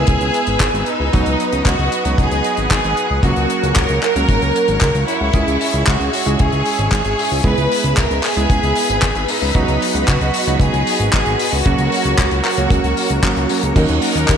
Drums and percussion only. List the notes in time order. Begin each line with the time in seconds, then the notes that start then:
0.07 kick, closed hi-hat
0.21 closed hi-hat
0.34 closed hi-hat
0.47 closed hi-hat
0.60 kick, clap, closed hi-hat
0.75 closed hi-hat
0.86 closed hi-hat
1.13 kick, closed hi-hat
1.26 closed hi-hat
1.40 closed hi-hat
1.52 closed hi-hat
1.65 kick, clap, closed hi-hat
1.79 closed hi-hat
1.92 closed hi-hat
2.05 closed hi-hat
2.18 kick, closed hi-hat
2.31 closed hi-hat
2.44 closed hi-hat
2.57 closed hi-hat
2.71 kick, clap, closed hi-hat
2.84 closed hi-hat
2.97 closed hi-hat
3.23 kick, closed hi-hat
3.36 closed hi-hat
3.50 closed hi-hat
3.63 closed hi-hat
3.76 kick, clap, closed hi-hat
3.89 closed hi-hat
4.02 clap, closed hi-hat
4.16 closed hi-hat
4.29 kick, closed hi-hat
4.42 closed hi-hat
4.56 closed hi-hat
4.68 closed hi-hat
4.81 kick, clap, closed hi-hat
4.95 closed hi-hat
5.08 closed hi-hat
5.33 kick, closed hi-hat
5.48 closed hi-hat
5.61 open hi-hat
5.74 closed hi-hat
5.87 kick, clap, closed hi-hat
6.01 closed hi-hat
6.13 open hi-hat
6.27 closed hi-hat
6.39 kick, closed hi-hat
6.52 closed hi-hat
6.66 open hi-hat
6.79 closed hi-hat
6.92 kick, clap, closed hi-hat
7.05 closed hi-hat
7.19 open hi-hat
7.44 kick, closed hi-hat
7.58 closed hi-hat
7.72 open hi-hat
7.84 closed hi-hat
7.97 kick, clap, closed hi-hat
8.11 closed hi-hat
8.23 clap, open hi-hat
8.37 closed hi-hat
8.50 kick, closed hi-hat
8.63 closed hi-hat
8.75 open hi-hat
8.90 closed hi-hat
9.02 kick, clap, closed hi-hat
9.15 closed hi-hat
9.28 open hi-hat
9.55 kick, closed hi-hat
9.68 closed hi-hat
9.82 open hi-hat
9.95 closed hi-hat
10.08 kick, clap, closed hi-hat
10.21 closed hi-hat
10.34 open hi-hat
10.47 closed hi-hat
10.60 kick, closed hi-hat
10.74 closed hi-hat
10.87 open hi-hat
11.00 closed hi-hat
11.13 kick, clap, closed hi-hat
11.26 closed hi-hat
11.39 open hi-hat
11.66 kick, closed hi-hat
11.78 closed hi-hat
11.92 open hi-hat
12.05 closed hi-hat
12.18 kick, clap, closed hi-hat
12.31 closed hi-hat
12.44 clap, open hi-hat
12.57 closed hi-hat
12.70 kick, closed hi-hat
12.84 closed hi-hat
12.97 open hi-hat
13.10 closed hi-hat
13.23 kick, clap, closed hi-hat
13.36 closed hi-hat
13.49 open hi-hat
13.63 closed hi-hat
13.76 kick, closed hi-hat, crash
13.88 closed hi-hat
14.02 open hi-hat
14.15 closed hi-hat
14.28 kick, clap, closed hi-hat